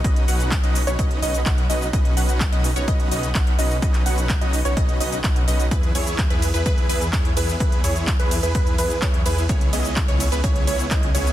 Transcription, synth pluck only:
\new Staff \with { instrumentName = "Synth pluck" } { \time 4/4 \key b \major \tempo 4 = 127 dis''8 fis''8 r16 dis''8 cis''16 dis''8 dis''8 fis''8 dis''8 | dis''8 fis''8 r16 dis''8 cis''16 dis''8 dis''8 fis''8 dis''8 | dis''8 fis''8 r16 dis''8 cis''16 dis''8 dis''8 fis''8 dis''8 | b'8 cis''8 r16 b'8 b'16 b'8 b'8 cis''8 b'8 |
b'8 cis''8 r16 b'8 b'16 b'8 b'8 cis''8 b'8 | cis''8 dis''8 r16 cis''8 b'16 cis''8 cis''8 dis''8 cis''8 | }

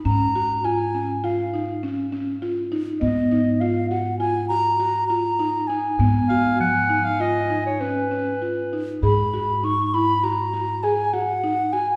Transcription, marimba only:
\new Staff \with { instrumentName = "Marimba" } { \time 5/4 \key gis \dorian \tempo 4 = 100 cis'8 fis'8 eis'8 cis'8 eis'8 dis'8 cis'8 cis'8 eis'8 dis'8 | b8 dis'8 eis'8 fis'8 eis'8 fis'8 fis'8 eis'8 dis'8 dis'8 | b8 fis'8 eis8 dis'8 eis'8 dis'8 cis'8 cis'8 eis'8 dis'8 | \key gis \minor gis'8 fis'8 dis'8 e'8 fis'8 fis'8 gis'8 fis'8 dis'8 fis'8 | }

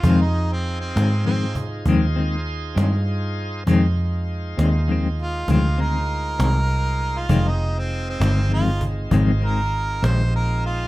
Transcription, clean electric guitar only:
\new Staff \with { instrumentName = "Clean electric guitar" } { \clef bass \time 12/8 \key f \dorian \tempo 4. = 66 <f, ees aes c'>8 r4 <ees aes c'>8 <f, ees aes c'>8 r8 <f, ees aes c'>8 <ees aes c'>8 r8 <ees aes c'>8 r4 | <f, ees aes c'>8 r4 <ees aes c'>8 <f, ees aes c'>8 r8 <f, ees aes c'>8 <ees aes c'>8 r8 <ees aes c'>8 r4 | <f, ees aes c'>8 r4 <ees aes c'>8 <f, ees aes c'>8 r8 <f, ees aes c'>8 <ees aes c'>8 r8 <ees aes c'>8 r4 | }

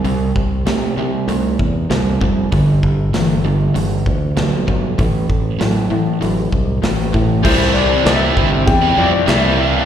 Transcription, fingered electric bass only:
\new Staff \with { instrumentName = "Fingered electric bass" } { \clef bass \time 4/4 \key c \major \tempo 4 = 97 c,8 c,8 c8 c8 c,8 e,8 c,8 f,,8 | g,,8 g,,8 g,,4 g,,8 d,8 b,,4 | a,,8 a,,8 a,8 a,8 a,,8 c,8 a,,8 a,8 | c,4 c,8 g,,8 e,8 f,8 c,4 | }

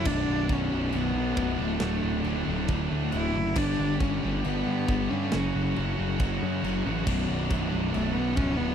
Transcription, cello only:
\new Staff \with { instrumentName = "Cello" } { \time 4/4 \key b \minor \tempo 4 = 137 d'4 cis'4 b4. a8~ | a4. r4. e'4 | d'4 cis'4 b4. cis'8~ | cis'4. r2 r8 |
fis2 a8 b8 cis'8 b8 | }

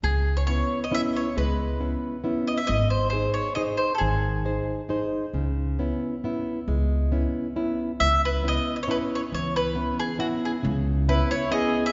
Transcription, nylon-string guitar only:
\new Staff \with { instrumentName = "Nylon-string guitar" } { \time 3/4 \key cis \minor \tempo 4 = 136 cis4 <b cis' e'>4 <b cis' e'>4 | gis4 <b cis' e'>4 <b cis' e'>4 | gis4 <dis' gis' bis'>4 <dis' gis' bis'>4 | dis4 <dis' gis' bis'>4 <dis' gis' bis'>4 |
cis4 <b cis' e'>4 <b cis' e'>4 | gis4 <b cis' e'>4 <b cis' e'>4 | cis4 <b cis' e'>4 <b cis' e'>4 | e4 <b cis' e'>4 <b cis' e'>4 |
cis4 <b cis' e'>4 <b cis' e'>4 | }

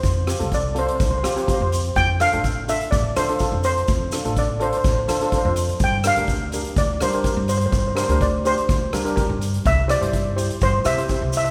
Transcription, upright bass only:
\new Staff \with { instrumentName = "Upright bass" } { \clef bass \time 4/4 \key g \dorian \tempo 4 = 125 f,8. c,4~ c,16 c,8 f8. f,8. | f,8. a,,4~ a,,16 a,,8 f8. f,8. | f,8. a,,4~ a,,16 a,,8 f8. f,8. | g,8. d,4~ d,16 d,8 g8. g,8. |
g,8. d,4~ d,16 d,8 g8. g,8. | c,8. g,4~ g,16 g,8 c8. c,8. | }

